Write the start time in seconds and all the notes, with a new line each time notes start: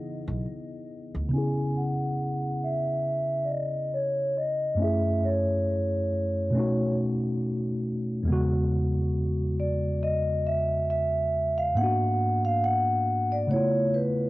Already playing: C#3 E3 B3 D#4 E4 G#4 D#5
0.28 B1
1.14 D2
1.29 C#3 B3
1.33 C#4 E4 G#5
1.38 G#4
1.77 F#5
2.64 E5
3.45 D5
3.50 D#5
3.94 C#5
4.37 D#5
4.75 F#2 A3
4.79 C#4 E4 E5
4.84 G#4
5.24 C#5
6.51 B2 A3
6.55 C#4 D#4
6.59 F#4
8.23 E2 G#3
8.28 C#3 B3
8.32 F#4
9.60 D5
10.03 D#5
10.47 E5
10.90 E5
11.58 F5
11.75 G#2 A#3 F#5
11.79 B3 D4
11.84 F#4
12.45 F5
12.64 F#5
13.32 D5
13.47 C#3 A3 C#5
13.51 B3 E4
13.56 F4
13.94 B4